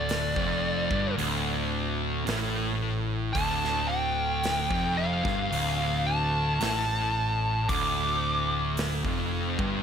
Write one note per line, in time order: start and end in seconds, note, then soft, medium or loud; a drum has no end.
0.00 0.32 D1 medium
0.00 0.34 D2 loud
0.00 1.14 D5 medium
0.09 snare loud
0.09 open hi-hat medium
0.36 0.87 F1 loud
0.36 0.89 F2 medium
0.36 kick loud
0.90 1.16 G1 medium
0.90 1.16 G2 loud
0.90 kick loud
1.17 2.22 D1 medium
1.17 2.24 D2 loud
1.17 open hi-hat soft
2.26 3.31 A1 medium
2.26 3.33 A2 loud
2.26 snare loud
2.26 open hi-hat medium
3.33 4.67 D1 medium
3.33 4.69 D2 loud
3.33 3.88 A5 medium
3.33 kick loud
3.33 open hi-hat medium
3.65 snare soft
3.89 5.01 G5 medium
4.44 snare loud
4.44 open hi-hat medium
4.70 5.21 F1 loud
4.70 5.23 F2 loud
4.70 kick medium
4.97 6.09 F5 medium
5.25 5.50 G1 medium
5.25 5.51 G2 loud
5.25 kick loud
5.25 snare soft
5.52 6.57 D1 medium
5.52 6.59 D2 medium
5.52 open hi-hat medium
6.06 7.74 A5 medium
6.60 7.65 A1 medium
6.60 7.67 A2 loud
6.60 snare loud
6.60 open hi-hat medium
7.69 9.01 D1 medium
7.69 9.03 D2 medium
7.69 9.82 D6 loud
7.69 kick loud
7.69 open hi-hat medium
8.77 snare loud
8.77 open hi-hat medium
9.05 9.55 F1 loud
9.05 9.57 F2 medium
9.05 kick loud
9.59 9.83 G1 medium
9.59 9.83 G2 loud
9.59 kick loud